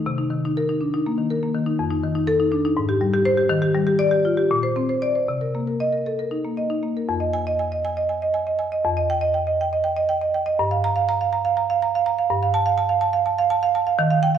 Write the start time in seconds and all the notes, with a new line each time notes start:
0.06 C3
0.18 D#4
0.31 D#3
0.45 D#4
0.57 A#4
0.69 D#4
0.81 D4
0.94 D#4
1.06 A#3
1.18 D#3
1.30 A#4
1.43 A#3
1.54 D#3
1.66 D#4
1.79 F2
1.90 D#4
2.03 D#3
2.15 D#4
2.27 A4
2.40 D#4
2.52 D4
2.65 D#4
2.77 G#2
2.89 G4
3.01 G3
3.14 G4
3.25 C5
3.38 G4
3.49 D#3
3.62 G4
3.74 G3
3.87 G4
3.99 D5
4.11 G4
4.25 F4
4.37 G4
4.51 A#2
4.63 C5
4.76 C4
4.89 C5
5.02 D5
5.15 C5
5.28 C3
5.41 A#4
5.55 A#3
5.68 A#4
5.80 D#5
5.92 A#4
6.06 A4
6.19 A#4
6.31 D#4
6.45 A#3
6.57 D#5
6.70 D#4
6.83 A#3
6.97 A#4
7.09 F2
7.20 D#5
7.34 G#5
7.47 D#5
7.59 G#5
7.72 D#5
7.85 G#5
7.97 D#5
8.09 G#5
8.22 D#5
8.34 G#5
8.47 D#5
8.59 G#5
8.72 D#5
8.85 F2
8.97 D#5
9.10 G5
9.21 D#5
9.34 G5
9.47 D#5
9.61 G5
9.73 D#5
9.84 G5
9.97 D#5
10.09 G5
10.22 D#5
10.35 G5
10.46 D#5
10.59 G2
10.71 F5
10.84 A#5
10.96 F5
11.09 A#5
11.21 F5
11.33 A#5
11.45 F5
11.57 A#5
11.70 F5
11.82 A#5
11.95 F5
12.06 A#5
12.18 F5
12.30 G2
12.42 F5
12.54 A5
12.66 F5
12.78 A5
12.89 F5
13.01 A5
13.13 F5
13.26 A5
13.38 F5
13.50 A5
13.63 F5
13.75 A5
13.87 F5
13.99 D#3
14.11 F5
14.23 G5
14.35 F5